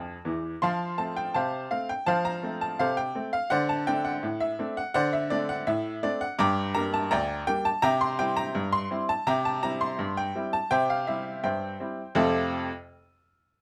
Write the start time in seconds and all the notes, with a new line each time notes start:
Already playing: F2 F3
0.25 E2 E3
0.62 F3 F5 A5 C6
0.98 A3 C4 A5
1.16 G5
1.34 C3 C5 F5 A5
1.71 A3 C4 F5
1.89 G5
2.06 F3 C5 F5 A5
2.25 A#5
2.43 A3 C4
2.61 A5
2.79 C3 A4 C5 F5
2.97 G5
3.15 A3 C4
3.33 F5
3.50 D3 C5 D5 F#5
3.69 A5
3.87 A3 C4 D4 G5
4.05 F#5
4.23 A2
4.40 E5
4.59 A3 C4 D4
4.77 F#5
4.94 D3 C5 D5 F#5
5.13 E5
5.30 A3 C4 D4 D5
5.49 F#5
5.67 A2 E5
6.03 A3 C4 D4 D5
6.21 F#5
6.39 G2 G5 A#5 D6
6.75 G3 A#3 D4 A#5
6.94 A5
7.11 D2 D5 G5 A#5
7.47 G3 A#3 D4 G5
7.65 A5
7.82 C3 E5 G5 A#5
8.01 C6
8.19 G3 C4 E4 G5
8.37 A#5
8.55 G2
8.73 C6
8.90 G3 C4 E4
9.09 A5
9.27 C3 E5 G5 A#5
9.45 A5
9.63 G3 C4 E4 A#5
9.81 C6
9.99 G2
10.17 G5
10.35 G3 C4 E4
10.53 A5
10.71 C3 C5 E5 G5
10.90 F5
11.07 G3 C4 E4 E5
11.44 G2 C5 E5 G5
11.80 G3 C4 E4
12.15 F2 C3 A3 C4 F4 A4 A5